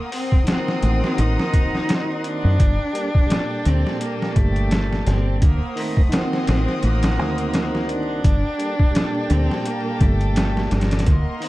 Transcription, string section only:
Already playing: A#4 F#5 C6 D#6
2.60 A4 G5
5.42 C5 F#5 D#6
8.25 A4 G5
11.06 A#4 D#5 F#5 C6

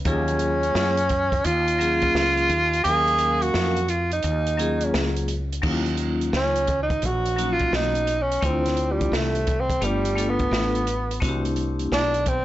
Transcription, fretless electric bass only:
0.05 D#2
0.75 F#2
1.45 D#2
2.15 C#2
2.49 D#2
2.85 D#2
3.54 F2
4.24 D#2
4.94 C#2
5.63 D#2
6.33 C#2
7.03 A#1
7.73 B1
8.43 D2
9.12 C2
9.82 G1
10.51 A1
11.22 C2
11.92 B1

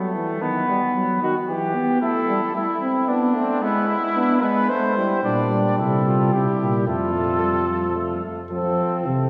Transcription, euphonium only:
Already playing: F#3
0.15 E3
0.41 D#3
0.68 G3
0.95 F#3
1.22 D#3
1.49 E3
1.75 B3
2.02 A3
2.29 G3
2.55 A3
2.81 C4
3.09 B3
3.35 A3
3.62 G#3
4.15 B3
4.41 G#3
4.69 A3
4.96 G3
5.24 G3
6.87 A3
7.14 A3
7.42 G3
7.69 F3
7.96 A3
8.23 A3

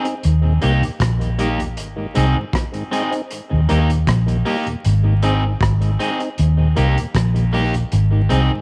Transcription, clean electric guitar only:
0.62 A#3 D#4 G4
1.39 A#3 D#4 G4
2.15 C4 D#4 G#4
2.91 C4 D#4 G#4
3.69 A#3 D#4 G4
4.45 A#3 D#4 G4
5.23 C4 D#4 G#4
5.99 C4 D#4 G#4
6.76 A#3 D#4 G4
7.53 A#3 D#4 G4
8.29 C4 D#4 G#4

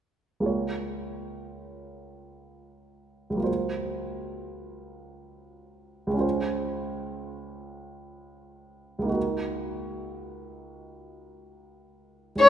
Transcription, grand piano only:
0.40 C#2 G#3 A#3 F4
0.46 C#5
3.30 C#2 F#3
3.37 A#3 F4
3.44 C5
6.07 C#2 G#3
6.14 C#4 F4
6.20 C5
8.99 C#2 A#3
9.06 D#4 F#4
9.13 A#4
12.35 C#2 C#4 D#4
12.40 G#4

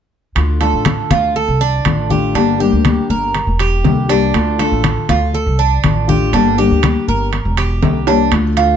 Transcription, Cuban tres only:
0.61 A4
1.11 F4
1.36 A4
1.61 D4
2.10 G4
2.35 D4
2.60 G4
3.10 A#4
3.60 G4
4.10 D4
4.60 A4
5.09 F4
5.34 A4
5.59 D4
6.09 G4
6.34 D4
6.58 G4
7.08 A#4
7.58 G4
8.08 D4
8.57 F4

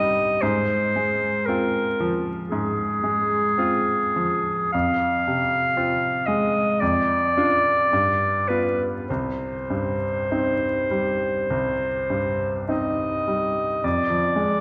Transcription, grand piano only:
Already playing: C2 G2 G3 C4 D#4
0.43 G#2
0.96 G#3
1.48 C4 F4
2.00 F3
2.52 G#2
3.04 G#3
3.58 C4 F4
4.16 F3
4.74 F2
5.27 C3
5.77 C4 F4
6.28 G#3
6.82 F2
7.37 D4 F4
7.93 G2
8.50 B3 F4
9.10 C2
9.70 G2
10.31 C4 D#4
10.91 G3
11.50 C2
12.10 G2
12.69 C4 D#4
13.28 G3
13.84 F2
14.10 F3
14.36 G#3

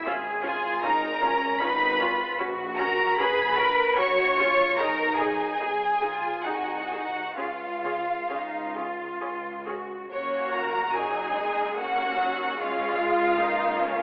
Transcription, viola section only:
0.06 C#4 F4
0.43 C#4 F4
0.83 C#4 F4
1.22 C#4 F4
1.61 C#4 F4
1.99 C#4 F4
2.39 C#4 F#4
2.79 C#4 F#4
3.18 C#4 F#4
3.56 C#4 F#4
3.96 C#4 F#4
4.39 C#4 F#4
4.78 D#4 G#4
5.20 D#4 G#4
5.60 D#4 G#4
6.02 D#4 G#4
6.45 D#4 G#4
6.91 D#4 G#4
7.37 C#4 G#4
7.85 C#4 G#4
8.30 C#4 G#4
8.76 C#4 G#4
9.21 C#4 G#4
9.67 C#4 G#4
10.12 A#3 F#4
10.94 F#3 D#4
11.35 G#3
11.77 A#3 C#4
12.20 F#3
12.59 G#3 C#4
13.00 F4
13.39 A#3 D#4
13.82 C#4

